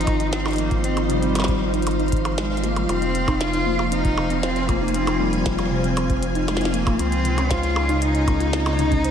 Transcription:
0.00 2.87 G#1 medium
0.00 2.88 F3 medium
0.00 0.32 D#4 loud
0.00 3.68 D#4 medium
0.00 0.43 G4 medium
0.00 3.65 C5 medium
0.00 0.11 D#5 medium
0.00 8.63 F5 medium
0.00 closed hi-hat medium
0.07 kick loud
0.07 closed hi-hat medium
0.07 percussion blips medium
0.20 0.26 D#4 loud
0.20 closed hi-hat soft
0.33 0.44 C4 loud
0.33 snare loud
0.33 closed hi-hat medium
0.46 0.52 D#4 medium
0.46 closed hi-hat soft
0.46 percussion blips medium
0.48 closed hi-hat soft
0.51 closed hi-hat soft
0.53 closed hi-hat soft
0.56 0.82 A#3 loud
0.56 closed hi-hat soft
0.58 0.68 A#3 medium
0.58 closed hi-hat medium
0.71 0.81 F4 medium
0.71 kick loud
0.71 closed hi-hat soft
0.84 0.95 C4 loud
0.84 0.91 C4 medium
0.84 closed hi-hat medium
0.97 closed hi-hat soft
0.97 percussion blips soft
1.10 1.14 C3 loud
1.10 2.08 G3 medium
1.10 closed hi-hat medium
1.23 1.29 C4 medium
1.23 closed hi-hat soft
1.35 1.39 C5 medium
1.35 snare medium
1.35 closed hi-hat medium
1.35 percussion blips soft
1.39 snare medium
1.39 percussion blips soft
1.42 snare loud
1.42 percussion blips medium
1.45 kick loud
1.45 closed hi-hat soft
1.45 percussion blips medium
1.74 1.80 D#4 loud
1.74 closed hi-hat soft
1.82 closed hi-hat soft
1.87 closed hi-hat medium
1.87 percussion blips soft
1.99 2.06 D#4 medium
1.99 closed hi-hat soft
2.08 closed hi-hat soft
2.12 kick loud
2.12 closed hi-hat medium
2.25 2.31 C5 medium
2.25 closed hi-hat soft
2.25 percussion blips medium
2.38 2.65 G#3 loud
2.38 2.44 F4 medium
2.38 snare loud
2.38 closed hi-hat medium
2.57 closed hi-hat soft
2.64 2.89 A#3 loud
2.64 2.70 F4 medium
2.64 closed hi-hat medium
2.76 2.83 G3 medium
2.76 closed hi-hat soft
2.76 percussion blips medium
2.89 6.97 F1 medium
2.89 6.99 F3 medium
2.89 3.42 C4 loud
2.89 2.93 C5 medium
2.89 closed hi-hat medium
2.89 percussion blips medium
3.02 closed hi-hat soft
3.15 closed hi-hat medium
3.28 3.34 D#4 loud
3.28 kick loud
3.28 closed hi-hat soft
3.28 percussion blips medium
3.41 6.99 C4 medium
3.41 3.91 F4 loud
3.41 snare loud
3.41 closed hi-hat medium
3.53 3.60 D#4 medium
3.53 9.11 G#5 medium
3.53 closed hi-hat soft
3.66 3.76 A#3 medium
3.79 3.89 F4 medium
3.79 percussion blips medium
3.92 3.98 C4 medium
3.92 4.40 D#4 loud
3.92 closed hi-hat medium
4.05 kick loud
4.05 closed hi-hat soft
4.18 4.21 C3 loud
4.18 percussion blips medium
4.30 4.37 C4 medium
4.30 closed hi-hat soft
4.43 4.70 C4 loud
4.43 4.47 C5 medium
4.43 snare loud
4.43 closed hi-hat medium
4.56 closed hi-hat soft
4.69 4.96 A#3 loud
4.69 kick loud
4.69 closed hi-hat medium
4.69 percussion blips soft
4.82 4.88 D#4 loud
4.88 closed hi-hat soft
4.94 5.21 C4 loud
4.94 closed hi-hat medium
5.07 5.14 D#4 medium
5.07 closed hi-hat soft
5.07 percussion blips medium
5.20 6.22 G3 medium
5.20 5.30 A#3 medium
5.33 5.43 F4 medium
5.33 closed hi-hat soft
5.46 kick loud
5.46 snare loud
5.46 closed hi-hat medium
5.59 closed hi-hat soft
5.59 percussion blips medium
5.71 5.75 C3 loud
5.84 5.91 C4 medium
5.84 closed hi-hat soft
5.97 6.01 C5 medium
5.97 closed hi-hat medium
5.97 percussion blips medium
6.10 kick loud
6.10 closed hi-hat soft
6.23 closed hi-hat medium
6.35 6.42 D#4 loud
6.35 closed hi-hat soft
6.48 6.72 G#3 loud
6.48 snare loud
6.48 closed hi-hat medium
6.48 percussion blips medium
6.57 snare medium
6.61 6.67 D#4 medium
6.61 closed hi-hat soft
6.65 snare medium
6.74 6.83 A#3 medium
6.74 7.01 A#3 loud
6.74 closed hi-hat medium
6.87 6.96 F4 medium
6.87 kick loud
6.87 closed hi-hat soft
6.87 percussion blips medium
6.99 9.11 C#2 medium
6.99 9.11 C#3 medium
6.99 7.06 C4 medium
6.99 7.52 C4 loud
6.99 closed hi-hat medium
7.06 9.11 D#4 medium
7.12 closed hi-hat soft
7.23 7.29 C3 loud
7.23 9.11 D#5 medium
7.23 closed hi-hat medium
7.38 7.44 C#4 medium
7.38 closed hi-hat soft
7.38 percussion blips medium
7.51 8.04 F4 loud
7.51 7.55 C5 medium
7.51 kick loud
7.51 snare loud
7.51 closed hi-hat medium
7.63 closed hi-hat soft
7.76 percussion blips medium
7.89 7.96 D#4 loud
7.89 closed hi-hat soft
8.02 9.11 D#4 loud
8.02 closed hi-hat medium
8.15 8.21 D#4 medium
8.15 closed hi-hat soft
8.28 8.37 A#3 medium
8.28 kick loud
8.28 closed hi-hat medium
8.28 percussion blips medium
8.40 8.50 F4 medium
8.40 closed hi-hat soft
8.53 8.60 C4 medium
8.53 snare loud
8.53 closed hi-hat medium
8.66 closed hi-hat soft
8.66 percussion blips medium
8.79 8.83 C3 loud
8.79 closed hi-hat medium
8.92 8.98 C#4 medium
8.92 kick loud
8.92 closed hi-hat soft
9.05 9.08 C5 medium
9.05 closed hi-hat medium

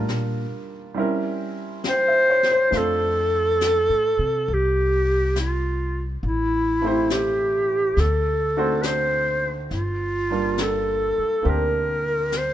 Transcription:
0.00 0.93 G3 soft
0.00 0.96 A#3 soft
0.00 0.97 D4 soft
0.00 0.99 F4 soft
0.00 0.98 A#4 soft
0.09 0.45 A#2 medium
0.09 snare soft
0.94 2.73 G3 soft
0.94 2.70 C4 soft
0.94 2.74 C#4 soft
0.94 2.74 E4 soft
0.94 brush sweep soft
0.99 2.75 A#4 medium
1.84 2.29 G5 soft
1.84 snare soft
1.89 2.79 C5 loud
2.08 2.46 E5 soft
2.30 2.57 C#5 soft
2.43 snare soft
2.52 2.74 C5 soft
2.71 3.86 F2 medium
2.71 6.22 A3 soft
2.71 6.22 C4 soft
2.71 6.23 D4 soft
2.71 6.24 F4 soft
2.71 brush sweep soft
2.71 snare soft
2.75 4.55 A4 loud
2.75 6.24 C5 soft
3.61 snare soft
3.61 hi-hat pedal medium
3.90 4.17 A2 medium
4.19 4.47 C3 medium
4.48 6.19 C2 medium
4.48 brush sweep soft
4.53 5.38 G4 medium
5.36 6.07 F4 medium
5.36 snare soft
5.36 hi-hat pedal soft
6.23 7.93 A1 medium
6.23 7.13 E4 medium
6.23 brush sweep soft
6.82 7.97 A3 soft
6.82 7.98 C4 soft
6.82 7.99 E4 soft
6.86 7.99 G4 soft
6.86 8.00 C5 soft
7.10 8.02 G4 medium
7.10 snare soft
7.10 hi-hat pedal soft
7.97 9.67 D2 medium
7.97 8.83 A4 medium
7.97 brush sweep soft
7.97 snare soft
8.57 9.72 A3 soft
8.57 9.72 C4 soft
8.57 9.72 D4 soft
8.57 9.72 F#4 soft
8.57 9.72 C5 medium
8.82 8.87 B4 medium
8.82 9.58 C5 medium
8.82 snare soft
8.82 hi-hat pedal medium
9.71 11.14 G1 medium
9.71 10.64 F4 medium
9.71 brush sweep soft
9.71 snare soft
10.31 12.54 G3 soft
10.31 11.41 A#3 soft
10.31 11.43 D4 soft
10.31 12.54 F4 soft
10.58 snare soft
10.58 hi-hat pedal medium
10.62 11.51 A4 medium
11.18 muted upright bass stroke soft
11.43 12.54 D2 medium
11.43 12.54 A#3 soft
11.43 12.54 C4 soft
11.43 12.54 D4 soft
11.43 12.54 G4 soft
11.43 brush sweep soft
11.50 12.39 A#4 medium
12.32 snare soft
12.32 hi-hat pedal soft
12.37 12.54 C5 medium

